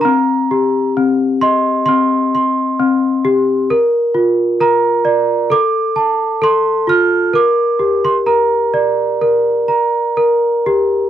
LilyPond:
\new Staff \with { instrumentName = "Celesta" } { \time 4/4 \key bes \major \tempo 4 = 65 << { bes''4 r8 c'''8 c'''4. r8 | r4 bes''4 d'''4 c'''8 f'''8 | d'''8. c'''16 bes''2 r4 | } \\ { c'8 g'8 c'8 ees''8 c'8 c'''8 c'8 g'8 | bes'8 f'8 bes'8 d''8 a'8 a''8 a'8 f'8 | bes'8 g'8 bes'8 d''8 bes'8 bes''8 bes'8 g'8 | } >> }